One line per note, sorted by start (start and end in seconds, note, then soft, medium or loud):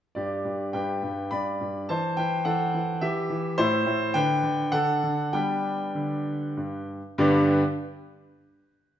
0.15 0.43 G2 soft
0.15 0.70 G4 soft
0.15 0.74 D5 medium
0.45 0.72 G2 soft
0.73 1.01 G2 soft
0.73 1.28 B4 soft
0.73 1.31 G5 medium
1.03 1.30 G2 soft
1.31 1.59 G2 soft
1.31 1.85 D5 soft
1.31 1.88 B5 medium
1.61 1.88 G2 soft
1.89 2.16 E3 soft
1.89 2.16 C5 medium
1.89 2.17 A5 medium
2.17 2.44 E3 soft
2.17 2.44 B4 soft
2.17 2.45 G5 medium
2.45 2.73 E3 soft
2.45 2.98 A4 medium
2.45 3.02 F#5 medium
2.74 3.00 E3 soft
3.01 3.29 E3 soft
3.01 3.55 G4 medium
3.01 3.58 E5 medium
3.30 3.57 E3 soft
3.58 3.85 A2 medium
3.58 4.11 E4 medium
3.58 4.15 C5 medium
3.86 4.14 A2 medium
4.14 4.42 D3 medium
4.14 4.69 B4 medium
4.14 4.73 G5 loud
4.44 4.71 D3 medium
4.72 5.02 D3 medium
4.72 5.29 A4 medium
4.72 5.32 F#5 medium
5.04 5.33 D3 medium
5.33 5.76 G3 soft
5.33 5.83 B3 soft
5.33 5.82 D4 soft
5.33 6.83 B4 medium
5.33 6.87 G5 medium
5.95 6.38 D3 soft
6.57 6.99 G2 soft
7.18 7.51 G2 medium
7.18 7.51 D3 medium
7.18 7.51 B3 medium
7.18 7.51 D4 medium
7.18 7.51 G4 medium
7.18 7.52 B4 medium